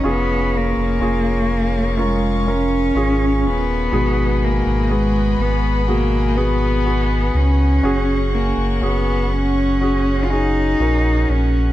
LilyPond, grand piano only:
<<
  \new Staff \with { instrumentName = "Grand piano" } { \time 4/4 \key aes \dorian \tempo 4 = 61 <des' f' aes'>4 <des' f' aes'>4 <des' f' bes'>8 <des' f' bes'>8 <des' f' aes'>4 | <ces ges' aes'>4 <ces' ges' aes'>4 <ces ges' aes'>8 <ces' ges' aes'>8 <ces' ges' aes'>4 | <des' ges' aes'>4 <des' ges' aes'>4 <des' ges' aes'>8 <des' ges' aes'>8 <des' ges' bes'>4 | }
  \new Staff \with { instrumentName = "Grand piano" } { \clef bass \time 4/4 \key aes \dorian r1 | aes,4. r2 r8 | r1 | }
>>